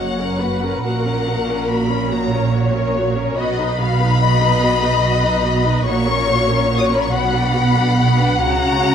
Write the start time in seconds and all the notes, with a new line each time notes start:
Already playing: F#1 F#2 A#3 F#4 C#5 F#5
0.18 C#4 A#4
0.39 A#3 F#4 B4
0.61 C#4 A#4
0.82 A#1 A#2 A#3 F#4 A#4 F#5
1.05 C#4 A#4
1.27 A#3 F#4
1.47 C#4 A#4
1.68 A#3 F#4 B5
1.89 C#4 A#4
2.10 A#3 F#4 C#5 A#5
2.32 C#4 A#4
2.52 A#3 F#4
2.74 C#4 A#4
2.95 A#3 F#4
3.16 C#4 A#4
3.37 B1 B2 B3 F#4 D#5 B5
3.58 D#4 B4
3.79 B3 F#4 F5
3.99 D#4 B4
4.20 B3 F#4 D#5
4.41 D#4 B4
4.61 B3 F#4
4.82 D#4 B4
5.03 B3 F#4
5.23 D#4 B4
5.44 B3 F#4
5.64 D#4 B4
5.84 A#1 A#2 A#3 F#4 C#5 C#6
6.06 C#4 A#4
6.27 A#3 F#4
6.48 C#4 A#4
6.70 A#3 F#4
6.77 D#6
6.86 C#6
6.90 C#4 A#4 B5
7.03 C#6
7.11 B1 B2 B3 F#4 F#5 B5
7.33 D4 B4
7.53 B3 F#4
7.75 D4 B4
7.97 B3 F#4
8.19 D4 B4
8.40 C#2 C#3 C#4 F#4 A#5